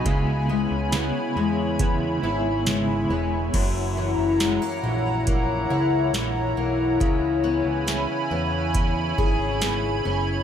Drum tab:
CC |--------|x-------|--------|
HH |x-x-x-x-|x-x-x-x-|x-x-x-x-|
TB |--x---x-|--x---x-|--x---x-|
SD |--o---o-|--o---o-|--o---o-|
BD |o---o---|o---o---|o---oo--|